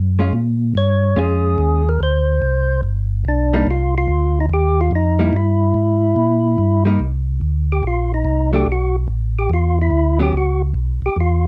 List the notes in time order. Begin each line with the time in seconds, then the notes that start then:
Already playing: F#2
0.19 G#3 C#4 F4
0.33 A#2
0.75 G2 C#5
1.16 F2 G#3 C#4 F4 G#4
1.58 D#2
1.89 A#4
2.00 D2 C5
2.42 C2
2.83 G1
3.25 B1 D4
3.54 G3 A#3 D4 D#4
3.67 C2 F4
3.98 F4
4.08 D2
4.40 D#4
4.49 D#2 G4
4.81 F4
4.91 F2
4.95 D#4
5.19 G3 A#3 E4
5.33 G2 E4
5.74 G#2
6.16 A#2
6.58 G2
6.85 G3 A#3 D#4
6.99 C2
7.41 D2
7.72 G4
7.83 A#1
7.87 F4
8.14 D#4
8.25 C2
8.53 F#3 A3 D4 G4
8.66 B1
8.72 F#4
9.08 A1
9.39 G4
9.50 E2 F4
9.82 E4
9.91 D2
10.19 F#3 B3 C#4 G4
10.33 C#2
10.37 F#4
10.74 B1
11.02 B1 G4
11.16 E2
11.20 F4